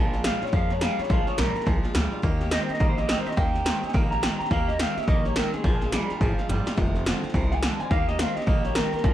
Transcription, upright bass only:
0.00 0.28 A#1 medium
0.42 muted upright bass stroke medium
0.53 0.85 F2 medium
0.98 muted upright bass stroke medium
1.10 1.22 A#1 medium
1.27 muted upright bass stroke medium
1.38 1.53 A#1 medium
1.56 muted upright bass stroke medium
1.67 1.82 C2 medium
1.84 muted upright bass stroke medium
1.95 2.10 D2 medium
2.23 2.56 D#2 medium
2.69 muted upright bass stroke medium
2.80 3.13 A#1 medium
3.26 muted upright bass stroke medium
3.37 3.69 D#2 medium
3.83 muted upright bass stroke medium
3.94 4.26 A#1 medium
4.40 muted upright bass stroke medium
4.51 4.83 D#2 medium
4.96 muted upright bass stroke medium
5.08 5.40 A#1 medium
5.53 muted upright bass stroke medium
5.64 5.96 A#1 loud
6.10 muted upright bass stroke medium
6.21 6.36 G#1 medium
6.38 muted upright bass stroke medium
6.49 6.64 G1 medium
6.78 7.10 F1 medium
7.23 muted upright bass stroke medium
7.34 7.66 C2 medium
7.80 muted upright bass stroke medium
7.91 8.23 D#2 medium
8.36 muted upright bass stroke medium
8.47 8.79 A#1 medium
8.93 muted upright bass stroke medium
9.04 9.14 A#1 medium

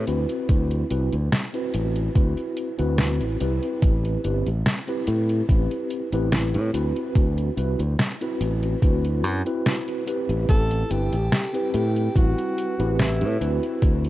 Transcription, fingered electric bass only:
0.08 0.25 D2 medium
0.49 0.82 D2 loud
0.91 1.08 C2 medium
1.13 1.28 D2 loud
1.75 2.08 A1 loud
2.15 2.33 D2 medium
2.80 3.21 D2 medium
3.21 3.37 A1 medium
3.41 3.58 C2 medium
3.82 4.16 A1 loud
4.24 4.42 G1 medium
4.46 4.62 A1 medium
5.07 5.41 A2 loud
5.49 5.66 A1 medium
6.12 6.56 A1 medium
6.54 6.70 A2 medium
6.74 6.91 D2 medium
7.15 7.49 D2 medium
7.57 7.75 C2 medium
7.79 7.95 D2 loud
8.40 8.74 A1 medium
8.82 9.24 D2 medium
9.24 9.41 F#2 medium
10.29 10.45 A1 loud
10.49 10.82 A1 medium
10.91 11.08 G1 medium
11.13 11.28 A1 loud
11.74 12.08 A2 medium
12.16 12.33 A1 medium
12.80 13.23 A1 medium
13.21 13.37 A2 medium
13.41 13.58 D2 medium
13.82 14.09 D2 medium

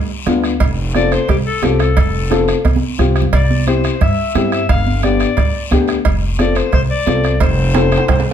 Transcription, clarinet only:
0.96 1.14 D5 loud
1.13 1.29 C5 medium
1.30 1.37 G4 medium
1.46 1.65 A4 medium
1.63 1.81 G4 medium
1.80 2.48 A4 medium
3.33 3.65 D5 medium
3.67 3.99 C5 medium
4.02 4.49 E5 loud
4.52 4.68 E5 medium
4.69 5.01 F5 loud
5.04 5.85 D5 medium
6.40 6.59 D5 loud
6.57 6.73 C5 medium
6.73 6.81 C5 loud
6.90 7.38 D5 loud
7.42 8.33 C5 medium

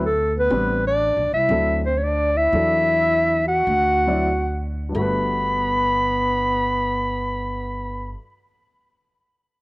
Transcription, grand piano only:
0.50 0.80 G3 medium
0.50 0.80 C4 medium
0.50 0.80 D4 medium
0.50 0.81 B4 medium
1.49 1.79 F#3 medium
1.49 1.80 C4 soft
1.49 1.80 E4 medium
1.49 1.80 A4 medium
2.52 3.38 F#3 medium
2.52 3.39 D4 medium
2.52 3.39 E4 medium
2.52 3.39 A4 medium
4.07 4.26 F#3 medium
4.07 4.27 C4 medium
4.07 4.27 E4 medium
4.07 4.27 D5 medium
4.89 8.12 G2 medium
4.89 8.15 G3 medium
4.95 8.18 A3 medium
4.95 8.21 F#4 medium
5.01 8.24 B4 medium

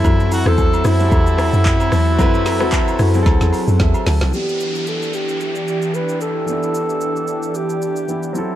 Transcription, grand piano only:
0.00 0.31 F#3 medium
0.00 0.32 C4 medium
0.00 0.32 E4 medium
0.00 0.33 A4 medium
0.46 0.88 F#3 medium
0.46 0.88 C4 medium
0.46 0.89 E4 medium
0.46 0.89 C5 medium
0.99 1.85 F#3 medium
0.99 1.85 C4 medium
0.99 1.86 E4 medium
0.99 1.07 G4 medium
1.08 1.89 A4 medium
2.19 2.51 F#3 loud
2.19 2.52 C4 loud
2.19 2.52 E4 loud
2.19 2.53 B4 loud
2.60 3.02 F#3 loud
2.60 3.02 C4 medium
2.60 3.03 E4 medium
2.60 3.03 A4 loud
3.14 3.99 F#3 medium
3.14 3.99 C4 medium
3.14 4.00 E4 medium
3.14 3.21 G#4 medium
3.23 4.03 A4 loud
3.81 4.05 E5 medium
4.07 4.32 A5 medium
4.32 6.43 E3 medium
4.32 6.44 B3 medium
4.32 6.44 D4 medium
4.37 4.42 F#4 medium
4.43 6.48 G4 medium
6.46 8.04 E3 medium
6.46 8.05 B3 medium
6.46 8.06 D4 medium
6.51 8.07 E4 medium
8.08 8.35 E3 soft
8.08 8.35 B3 soft
8.08 8.36 D4 soft
8.08 8.35 E4 medium
8.33 8.55 F#3 medium
8.33 8.55 C4 medium
8.33 8.55 E4 medium
8.38 8.55 A4 medium

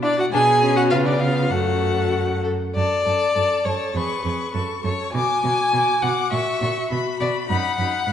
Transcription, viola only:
0.02 0.16 D4 medium
0.18 0.23 F#4 medium
0.33 0.78 G#4 medium
0.76 0.92 F#4 medium
0.91 1.07 F4 medium
1.06 1.20 D4 medium
1.21 1.54 F4 medium
1.52 2.45 F#4 medium
2.77 3.06 A4 soft
3.07 3.36 A4 soft
3.37 3.65 A4 soft
3.67 3.95 A4 soft
3.96 4.24 G#4 soft
4.25 4.53 G#4 soft
4.55 4.83 A4 soft
4.84 5.12 A4 soft
5.13 5.43 F#4 soft
5.44 5.72 F#4 soft
5.73 6.02 F#4 medium
6.03 6.31 F#4 soft
6.32 6.60 F#4 medium
6.61 6.90 F#4 medium
6.90 7.19 F#4 medium
7.21 7.49 F#4 medium
7.49 7.78 D#4 medium
7.79 8.07 D#4 medium
8.09 8.12 E4 medium

